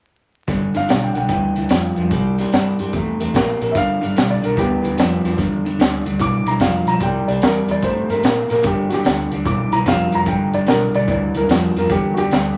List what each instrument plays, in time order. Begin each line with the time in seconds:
0.48 fingered electric bass G1, clean electric guitar G2 D3, kick, snare, closed hi-hat
0.74 fingered electric bass G1, clean electric guitar G2 D3, upright piano F5, snare, closed hi-hat
0.89 fingered electric bass B1, clean electric guitar G2 D3, snare, closed hi-hat
1.03 upright piano G5
1.13 fingered electric bass B1, clean electric guitar G2 D3, upright piano F#5 G5, closed hi-hat
1.29 fingered electric bass D2, clean electric guitar G2 E3, upright piano G5, kick, closed hi-hat
1.56 fingered electric bass D2, clean electric guitar G2 E3, closed hi-hat
1.69 fingered electric bass F2, clean electric guitar G2 F3, snare, closed hi-hat
1.96 fingered electric bass F2, clean electric guitar G2 F3, closed hi-hat
2.11 fingered electric bass C2, clean electric guitar C3 G3, kick, closed hi-hat
2.38 clean electric guitar C3 G3, snare, closed hi-hat
2.52 fingered electric bass G2, clean electric guitar C3 G3, snare, closed hi-hat
2.79 fingered electric bass G2, clean electric guitar C3 G3, closed hi-hat
2.93 fingered electric bass E2, clean electric guitar C3 A3, kick, closed hi-hat
3.20 fingered electric bass E2, clean electric guitar C3 A3, closed hi-hat
3.34 fingered electric bass A#1, clean electric guitar C3 A#3, kick, snare, closed hi-hat
3.61 fingered electric bass A#1, clean electric guitar C3 A#3, closed hi-hat
3.72 fingered electric bass G1, clean electric guitar G2 D3, upright piano E5, kick
3.76 upright piano F5, snare, closed hi-hat
4.01 fingered electric bass G1, clean electric guitar G2 D3, closed hi-hat
4.16 fingered electric bass B1, clean electric guitar G2 D3, snare, closed hi-hat
4.30 upright piano D5
4.42 fingered electric bass B1, clean electric guitar G2 D3, upright piano A#4, closed hi-hat
4.56 fingered electric bass D2, clean electric guitar G2 E3, upright piano B3 G4, kick, closed hi-hat
4.83 fingered electric bass D2, clean electric guitar G2 E3, closed hi-hat
4.97 fingered electric bass F2, clean electric guitar G2 F3, snare, closed hi-hat
5.24 fingered electric bass F2, clean electric guitar G2 F3, snare, closed hi-hat
5.38 fingered electric bass E2, clean electric guitar G2 D3, kick, snare, closed hi-hat
5.65 clean electric guitar G2 D3, closed hi-hat
5.79 fingered electric bass D2, clean electric guitar G2 D3, snare, closed hi-hat
6.05 fingered electric bass D2, clean electric guitar G2 D3, closed hi-hat
6.20 fingered electric bass B1, clean electric guitar G2 E3, upright piano D6, kick, closed hi-hat
6.46 fingered electric bass B1, clean electric guitar G2 E3, upright piano A#5, closed hi-hat
6.60 fingered electric bass F1, clean electric guitar G2 F3, upright piano F5, kick, snare, closed hi-hat
6.86 fingered electric bass B1, clean electric guitar G2 F3, upright piano A#5, closed hi-hat
7.00 fingered electric bass C2, clean electric guitar C3 G3, upright piano G5, kick, closed hi-hat
7.28 fingered electric bass C2, clean electric guitar C3 G3, upright piano D5, closed hi-hat
7.42 fingered electric bass E2, clean electric guitar C3 G3, upright piano A#4, snare, closed hi-hat
7.68 fingered electric bass E2, clean electric guitar C3 G3, upright piano D5, closed hi-hat
7.82 fingered electric bass G2, clean electric guitar C3 A3, upright piano C5, kick, closed hi-hat
8.09 fingered electric bass G2, clean electric guitar C3 A3, upright piano A#4, closed hi-hat
8.23 fingered electric bass A#2, clean electric guitar C3 A#3, snare, closed hi-hat
8.50 fingered electric bass A#2, clean electric guitar C3 A#3, upright piano A#4, snare, closed hi-hat
8.63 fingered electric bass G1, clean electric guitar G2 D3, upright piano G4, kick, snare, closed hi-hat
8.89 clean electric guitar G2 D3, upright piano F#4, snare, closed hi-hat
8.94 upright piano G4
9.05 fingered electric bass D2, clean electric guitar G2 D3, snare, closed hi-hat
9.31 fingered electric bass D2, clean electric guitar G2 D3, closed hi-hat
9.45 fingered electric bass B1, clean electric guitar G2 E3, upright piano D6, kick, closed hi-hat
9.72 fingered electric bass B1, clean electric guitar G2 E3, upright piano A#5, closed hi-hat
9.86 fingered electric bass F1, clean electric guitar G2 F3, upright piano F5, kick, snare, closed hi-hat
10.12 fingered electric bass F1, clean electric guitar G2 F3, upright piano A#5, closed hi-hat
10.26 fingered electric bass G1, clean electric guitar G2 D3, upright piano G5, kick, closed hi-hat
10.53 fingered electric bass G1, clean electric guitar G2 D3, upright piano D5, closed hi-hat
10.67 fingered electric bass B1, clean electric guitar G2 D3, upright piano A#4, snare, closed hi-hat
10.94 fingered electric bass B1, clean electric guitar G2 D3, upright piano D5, closed hi-hat
11.08 fingered electric bass D2, clean electric guitar G2 E3, upright piano D5, kick, closed hi-hat
11.34 fingered electric bass D2, clean electric guitar G2 E3, upright piano A#4, closed hi-hat
11.48 fingered electric bass F2, clean electric guitar G2 F3, snare, closed hi-hat
11.75 fingered electric bass F2, clean electric guitar G2 F3, upright piano A#4, snare, closed hi-hat
11.90 fingered electric bass E2, clean electric guitar G2 D3, upright piano G4, kick, snare, closed hi-hat
12.14 clean electric guitar G2 D3, upright piano F#4, closed hi-hat
12.18 upright piano G4
12.31 fingered electric bass D2, clean electric guitar G2 D3, snare, closed hi-hat